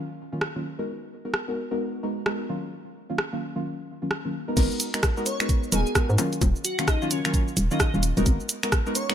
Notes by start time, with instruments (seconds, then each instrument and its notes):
0.32 synth stab D#3 F#3 A#3 C#4 F4
0.41 cross-stick
0.56 synth stab D#3 F#3 A#3 C#4 F4
0.79 synth stab G#3 B3 D#4 F#4 A#4
1.25 synth stab G#3 B3 D#4 F#4 A#4
1.34 cross-stick
1.48 synth stab G#3 B3 D#4 F#4 A#4
1.71 synth stab G#3 B3 D#4 F#4 A#4
2.03 synth stab G#3 B3 D#4 F#4 A#4
2.26 synth stab G#3 B3 D#4 F#4 A#4, cross-stick
2.49 synth stab D#3 F#3 A#3 C#4 F4
3.10 synth stab D#3 F#3 A#3 C#4 F4
3.18 cross-stick
3.33 synth stab D#3 F#3 A#3 C#4 F4
3.56 synth stab D#3 F#3 A#3 C#4 F4
4.02 synth stab D#3 F#3 A#3 C#4 F4
4.11 cross-stick
4.25 synth stab D#3 F#3 A#3 C#4 F4
4.48 synth stab G#3 B3 D#4 F#4 A#4
4.57 fm bass G#1, synth stab G#3 B3 D#4 F#4 A#4, kick, closed hi-hat, crash, cabasa
4.71 cabasa
4.80 closed hi-hat, cabasa
4.94 synth stab G#3 B3 D#4 F#4 A#4, finger snap, closed hi-hat, cabasa
5.03 kick, cross-stick, closed hi-hat, cabasa
5.17 synth stab G#3 B3 D#4 F#4 A#4, cabasa
5.26 digital synth lead C#5, closed hi-hat, cabasa
5.40 synth stab G#3 B3 D#4 F#4 A#4, finger snap, closed hi-hat, cabasa
5.49 kick, closed hi-hat, cabasa
5.63 cabasa
5.72 fm bass D#1, synth stab G#3 B3 D#4 F#4 A#4, digital synth lead G#4, closed hi-hat, cabasa
5.86 cabasa
5.95 synth stab G#3 B3 D#4 F#4 A#4, kick, cross-stick, closed hi-hat, cabasa
6.09 fm bass G#2, cabasa
6.18 synth stab D#3 F#3 A#3 C#4 F4, closed hi-hat, high bongo, cabasa
6.33 closed hi-hat, cabasa
6.41 fm bass D#1, kick, closed hi-hat, high bongo, cabasa
6.56 cabasa
6.65 digital synth lead F#4, closed hi-hat, cabasa
6.79 synth stab D#3 F#3 A#3 C#4 F4, finger snap, closed hi-hat, cabasa
6.88 digital synth lead D#4, kick, cross-stick, closed hi-hat, cabasa
7.02 synth stab D#3 F#3 A#3 C#4 F4, cabasa
7.11 digital synth lead C#4, closed hi-hat, cabasa
7.25 synth stab D#3 F#3 A#3 C#4 F4, digital synth lead C#4, finger snap, closed hi-hat, cabasa
7.34 kick, closed hi-hat, cabasa
7.48 cabasa
7.57 fm bass D#1, closed hi-hat, cabasa
7.71 synth stab D#3 F#3 A#3 C#4 F4, digital synth lead D#4, cabasa
7.80 digital synth lead D#4, kick, cross-stick, closed hi-hat, cabasa
7.94 fm bass D#1, synth stab D#3 F#3 A#3 C#4 F4, cabasa
8.03 closed hi-hat, cabasa
8.17 fm bass D#1, synth stab G#3 B3 D#4 F#4 A#4, closed hi-hat, cabasa
8.26 fm bass G#1, kick, closed hi-hat, cabasa
8.40 cabasa
8.49 closed hi-hat, cabasa
8.63 synth stab G#3 B3 D#4 F#4 A#4, finger snap, closed hi-hat, cabasa
8.72 kick, cross-stick, closed hi-hat, cabasa
8.86 synth stab G#3 B3 D#4 F#4 A#4, cabasa
8.95 digital synth lead C#5, closed hi-hat, cabasa
9.09 synth stab G#3 B3 D#4 F#4 A#4, finger snap, closed hi-hat, cabasa